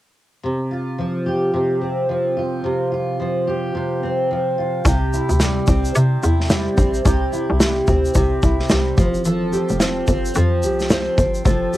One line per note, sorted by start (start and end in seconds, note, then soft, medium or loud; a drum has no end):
0.43 1.52 C3 medium
0.71 2.36 F4 soft
0.98 2.08 F3 soft
1.26 3.47 G4 medium
1.54 2.63 C3 medium
1.81 4.03 C4 soft
2.09 3.19 F3 soft
2.37 2.91 F4 soft
2.64 3.74 C3 medium
2.92 4.57 F4 soft
3.20 4.29 F3 medium
3.47 4.85 G4 medium
3.75 4.84 C3 medium
4.03 5.68 C4 soft
4.31 4.92 F3 medium
4.58 4.92 F4 medium
4.85 5.21 C2 loud
4.85 5.94 C3 medium
4.85 7.05 G4 medium
4.85 kick loud
4.85 shaker medium
5.13 6.21 E4 medium
5.13 shaker soft
5.29 5.61 D2 medium
5.29 shaker soft
5.40 6.49 G3 medium
5.40 snare loud
5.40 shaker medium
5.67 5.90 C2 medium
5.67 6.77 C4 medium
5.67 kick medium
5.67 shaker soft
5.85 shaker medium
5.95 7.04 C3 medium
5.95 6.18 C3 loud
5.95 shaker medium
6.22 6.68 E2 loud
6.22 7.31 E4 medium
6.22 shaker medium
6.40 snare soft
6.50 7.59 G3 medium
6.50 snare loud
6.50 shaker medium
6.77 7.00 A#1 loud
6.77 7.87 C4 medium
6.77 kick medium
6.77 shaker medium
6.94 shaker soft
7.05 7.28 C2 loud
7.05 8.14 C3 medium
7.05 9.25 G4 medium
7.05 kick loud
7.05 shaker medium
7.32 8.42 E4 medium
7.32 shaker soft
7.50 7.81 C2 loud
7.60 8.70 G3 medium
7.60 snare loud
7.60 shaker medium
7.87 8.11 D2 medium
7.87 9.79 C4 medium
7.87 kick medium
7.87 shaker soft
8.05 shaker soft
8.15 8.38 C2 medium
8.15 9.04 C3 medium
8.15 kick medium
8.15 shaker medium
8.43 8.66 C2 medium
8.43 9.05 E4 medium
8.43 kick medium
8.43 shaker medium
8.60 snare soft
8.69 8.93 C2 medium
8.69 8.98 G3 medium
8.69 snare loud
8.69 shaker medium
8.98 9.57 F1 loud
8.98 9.24 F3 medium
8.98 kick loud
8.98 shaker medium
9.14 shaker soft
9.25 10.34 F3 medium
9.25 11.45 A4 medium
9.25 shaker medium
9.52 10.63 G4 medium
9.52 shaker medium
9.69 10.02 F1 medium
9.69 shaker soft
9.79 10.07 C4 medium
9.79 snare loud
9.79 shaker medium
10.07 10.31 G1 loud
10.07 10.90 C4 medium
10.07 kick medium
10.07 shaker soft
10.25 shaker medium
10.35 10.65 F2 loud
10.35 11.44 F3 medium
10.35 shaker medium
10.63 11.08 C2 loud
10.63 11.72 G4 medium
10.63 shaker medium
10.80 snare soft
10.80 shaker soft
10.90 11.17 C4 medium
10.90 snare loud
10.90 shaker medium
11.18 11.41 G1 loud
11.18 11.77 C4 medium
11.18 kick medium
11.18 shaker medium
11.35 shaker soft
11.45 11.68 F1 loud
11.45 11.77 F3 medium
11.45 11.77 A4 medium
11.45 kick loud
11.45 shaker medium
11.73 11.77 G4 medium
11.73 shaker soft